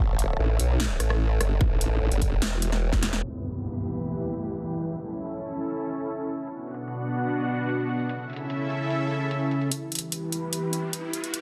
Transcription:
Already playing: A4 C#5 E5
0.00 A1
0.19 closed hi-hat
0.39 A1
0.59 B1, closed hi-hat
0.80 snare
1.00 A1, cross-stick, closed hi-hat
1.10 cross-stick
1.40 G1, cross-stick, closed hi-hat
1.61 A1, kick
1.81 closed hi-hat
2.01 A1
2.12 G1, closed hi-hat
2.22 kick, closed hi-hat
2.42 E1, snare
2.62 closed hi-hat
2.72 snare
2.93 kick, snare
3.03 snare, closed hi-hat
3.13 snare
3.23 E3 E4 G4 B4 B5, downlifter
3.43 closed hi-hat
3.47 closed hi-hat
3.50 closed hi-hat
3.63 closed hi-hat
3.84 closed hi-hat
4.04 closed hi-hat
4.45 closed hi-hat
4.65 closed hi-hat
4.85 C#4 E4 A4, closed hi-hat
5.05 closed hi-hat
5.09 closed hi-hat
5.12 closed hi-hat
5.26 closed hi-hat
5.46 closed hi-hat
5.66 closed hi-hat
5.87 closed hi-hat
6.07 closed hi-hat
6.27 closed hi-hat
6.37 closed hi-hat
6.47 B2 B3 D4 F#4 F#5, closed hi-hat
6.68 closed hi-hat
6.71 closed hi-hat
6.74 closed hi-hat
6.88 closed hi-hat
7.08 closed hi-hat
7.28 closed hi-hat
7.49 closed hi-hat
7.69 closed hi-hat
7.89 closed hi-hat
7.99 closed hi-hat
8.09 C#3 C#4 E4 A4 E5, closed hi-hat
8.30 closed hi-hat
8.33 closed hi-hat
8.36 closed hi-hat
8.50 closed hi-hat
8.70 closed hi-hat
8.90 closed hi-hat
9.11 closed hi-hat
9.31 closed hi-hat
9.51 closed hi-hat
9.62 closed hi-hat
9.71 E3 E4 G4 B4 B5, closed hi-hat, riser
9.92 closed hi-hat
9.95 closed hi-hat
9.99 closed hi-hat
10.12 closed hi-hat
10.32 closed hi-hat
10.53 closed hi-hat
10.73 closed hi-hat
10.93 closed hi-hat
11.13 closed hi-hat
11.24 closed hi-hat
11.34 A4 C#5, closed hi-hat

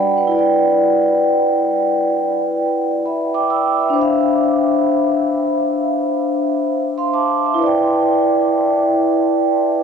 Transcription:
Already playing: D5 F#5 G5 B5
0.17 B4 F#5
0.27 E4
0.32 B4 D5
0.39 G5
3.06 E5 B5
3.34 G5 D6
3.50 B5 E6
3.80 E5 B5
3.90 D4 C5
3.98 E5 F5
6.98 F5 C6
7.14 A5 D6
7.45 E5 A5
7.54 E4 B4
7.62 D5 G5

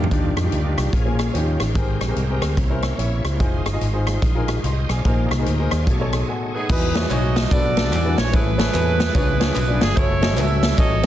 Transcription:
0.04 floor tom
0.11 D#2 D#3 G3 D4 D#4 F4 G4, kick, closed hi-hat
0.37 F2, cross-stick, closed hi-hat
0.43 D4 D#4 F4 G4
0.52 D2, closed hi-hat
0.64 D4 D#4 F4 G4
0.78 C2, cross-stick, closed hi-hat
0.93 A#2 F3 A#3 C#4 G#4, kick, closed hi-hat
1.05 A#3 C#4 F4 G#4
1.19 cross-stick, closed hi-hat
1.33 D#2 D#3 F3 C#4 D#4 F4 F#4 G4, closed hi-hat
1.40 G4
1.60 A1, cross-stick, closed hi-hat
1.75 G#1 G#2 G#3 C4 G4 G#4 A#4, kick, closed hi-hat
2.01 A#1, cross-stick, closed hi-hat
2.08 C4 G4 G#4 A#4
2.16 C2, closed hi-hat
2.29 C4 G4 G#4 A#4
2.41 D2, cross-stick, closed hi-hat
2.57 C2 C3 A#3 C#4 E4 C5, kick, closed hi-hat
2.70 C#4 E4 A#4 C5
2.82 A#4 C#5 E5 G5, cross-stick, closed hi-hat
2.98 A#1 E4 C#5 E5, closed hi-hat
3.24 C#2 C5, cross-stick, closed hi-hat
3.39 G3 D#4 F4 G#4 C5, kick, closed hi-hat
3.46 G#3
3.66 G1, cross-stick, closed hi-hat
3.73 D#4 F4 G#4 D#5
3.81 G#1, closed hi-hat
3.93 D#4 F4 G#4 C5
4.07 cross-stick, closed hi-hat
4.22 A#1, kick, closed hi-hat
4.35 D#4 F4 G#4 A#4
4.48 cross-stick, closed hi-hat
4.64 C2 D#5 G5 C6, closed hi-hat
4.89 B1 C5 D5 F5 G#5, cross-stick, closed hi-hat
5.05 A#1 A#2 A#3 D#4 G#4 A#4 C5, kick, closed hi-hat
5.30 C2, cross-stick, closed hi-hat
5.39 D#4 G#4 A#4 C5
5.46 D2 G5 A#5, closed hi-hat
5.59 D#4 G#4 A#4 C5
5.71 D#2 D5 F5, cross-stick, closed hi-hat
5.87 B1 B2 A3 D#4 G#4 C#5, kick, closed hi-hat
6.00 D#4 G#4 A4 C#5
6.13 cross-stick, closed hi-hat
6.28 A4 F#5 G#5
6.54 D#4 G#4 B4 F#5
6.69 E2 E3 D#4 E4 F#4 G#4 B4, kick, crash, tambourine
6.95 D#4 E4 F#4 G#4 C#5, snare, ride, tambourine
7.10 B1 D#4 E4 F#4 G#4 C#5 D#5, clap, ride, tambourine
7.36 snare, ride, tambourine
7.51 B1 B2 B3 D4 F#4 A4 B4 D5, kick, ride, tambourine
7.77 B3 D4 F#4 A4 D5, snare, ride, tambourine
7.92 E2 E3, clap, ride, tambourine
8.05 D4 E4 F#4 G#4 B4
8.18 A#1 C#5, snare, ride, tambourine
8.32 A1 A2 C#4 E4 G#4 A4 B4, kick, ride, tambourine
8.58 C#4 E4 G#4 A4 C#5, snare, ride, tambourine
8.73 E2 C#4 E4 G#4 A4 B4, clap, ride, tambourine
9.00 snare, ride, tambourine
9.15 C#2 C#3 D4 F4 G#4 B4 C#5, kick, ride, tambourine
9.39 D4 F4 G#4 B4 C#5, snare, ride, tambourine
9.56 B1, clap, ride, tambourine
9.68 D4 F4 G#4 B4 D5
9.81 G1 G#4, snare, ride, tambourine
9.96 F#1 C#4 E4 F#4 A4 C#5, kick, ride, tambourine
10.21 C#4 E4 F#4 A4 D#5, snare, ride, tambourine
10.37 C#2 C#4 E4 F#4 A4 B4 C#5 E5, clap, ride, tambourine
10.63 snare, ride, tambourine
10.77 A1 C#4 E4 F#4 A4 C#5 D#5, kick, ride, tambourine
11.03 C#4 E4 F#4

